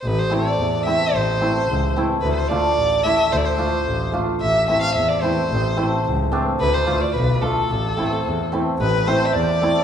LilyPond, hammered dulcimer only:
\new Staff \with { instrumentName = "Hammered dulcimer" } { \time 2/4 \key a \minor \tempo 4 = 110 r8 <a c' e'>16 r8. <a c' e'>16 r16 | r8 <a c' e'>16 r8. <a c' e'>16 r16 | r8 <a d' f'>16 r8. <a d' e'>16 r16 | r8 <a d' f'>16 r8. <a d' f'>16 r16 |
r8 <a c' e'>16 r8. <a c' e'>16 r16 | r8 <a c' e'>16 r8. <a c' d'>16 r16 | r8 <a d' f'>16 r8. <a d' f'>16 r16 | r8 <a c' e'>16 r8. <a c' e'>16 r16 |
r8 <a c' e'>16 r8. <a c' e'>16 r16 | }